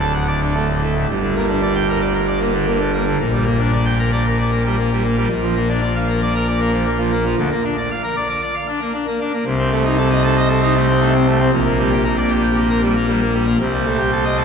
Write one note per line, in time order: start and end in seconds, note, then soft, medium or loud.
0.00 1.05 D1 medium
0.00 1.05 D2 medium
0.00 0.13 A4 medium
0.14 0.26 F#5 medium
0.28 0.40 D5 medium
0.42 0.54 D4 medium
0.55 0.67 A3 medium
0.69 0.81 A2 medium
0.83 0.95 A3 medium
0.96 1.07 A2 medium
1.09 3.16 G1 medium
1.09 3.15 G2 medium
1.23 1.35 D3 medium
1.36 1.48 A#3 medium
1.49 1.61 D4 medium
1.63 1.74 D5 medium
1.75 1.87 G5 medium
1.89 2.01 A#4 medium
2.01 2.13 D5 medium
2.15 2.26 A#4 medium
2.28 2.40 D5 medium
2.40 2.52 A#3 medium
2.54 2.66 D3 medium
2.67 2.79 A#3 medium
2.80 2.92 D3 medium
2.94 3.05 A#3 medium
3.07 3.18 D3 medium
3.20 5.26 A#1 medium
3.20 5.26 A#2 medium
3.33 3.45 G3 medium
3.45 3.57 A#3 medium
3.59 3.71 D4 medium
3.73 3.84 D5 medium
3.86 3.97 G5 medium
3.99 4.11 A#4 medium
4.12 4.24 D5 medium
4.26 4.37 A#4 medium
4.39 4.50 D5 medium
4.52 4.63 A#3 medium
4.65 4.76 G3 medium
4.78 4.90 A#3 medium
4.92 5.03 G3 medium
5.04 5.16 A#3 medium
5.17 5.28 G3 medium
5.30 7.34 A#1 medium
5.30 7.35 A#2 medium
5.43 5.55 F3 medium
5.56 5.68 A#3 medium
5.69 5.81 D4 medium
5.82 5.94 D5 medium
5.96 6.07 F5 medium
6.09 6.20 A#4 medium
6.22 6.33 D5 medium
6.35 6.46 A#4 medium
6.48 6.59 D5 medium
6.61 6.72 A#3 medium
6.73 6.85 F3 medium
6.87 6.98 A#3 medium
7.00 7.11 F3 medium
7.13 7.24 A#3 medium
7.25 7.37 F3 medium
7.38 7.49 D2 medium
7.38 7.49 D3 medium
7.51 7.63 A#3 medium
7.64 7.76 D4 medium
7.78 7.89 D5 medium
7.91 8.02 F5 medium
8.04 8.15 A#4 medium
8.16 8.28 D5 medium
8.29 8.41 D6 loud
8.42 8.54 D5 medium
8.55 8.67 F5 medium
8.68 8.80 D4 medium
8.81 8.93 A#3 medium
8.94 9.06 D4 medium
9.07 9.19 A#3 medium
9.21 9.32 D4 medium
9.34 9.44 A#3 medium
9.46 11.49 C2 loud
9.46 11.50 C3 medium
9.59 9.71 C4 medium
9.72 9.84 A3 medium
9.85 9.97 D#4 medium
9.98 10.09 A4 medium
10.11 10.22 D#5 loud
10.24 10.36 A4 medium
10.37 10.48 D#5 medium
10.50 10.61 A4 medium
10.62 10.74 D#4 medium
10.75 10.87 A3 medium
10.88 11.00 C4 medium
11.01 11.13 A3 medium
11.14 11.26 C4 medium
11.27 11.39 A3 medium
11.40 11.51 C4 medium
11.53 13.56 A#1 medium
11.53 13.56 A#2 medium
11.66 11.78 A#3 medium
11.79 11.91 G3 medium
11.92 12.04 G4 medium
12.04 12.16 A#4 medium
12.17 12.29 D5 medium
12.31 12.42 G4 medium
12.43 12.55 G5 loud
12.56 12.68 G4 medium
12.70 12.81 A#4 medium
12.83 12.94 G3 medium
12.96 13.07 A#3 medium
13.08 13.20 G3 medium
13.22 13.33 A#3 medium
13.34 13.46 G3 medium
13.47 13.58 A#3 medium
13.60 14.45 C2 medium
13.60 14.45 C3 medium
13.73 13.85 G3 medium
13.86 13.98 A3 medium
13.99 14.11 G4 medium
14.12 14.24 A4 medium
14.25 14.37 D#5 medium
14.38 14.45 A4 medium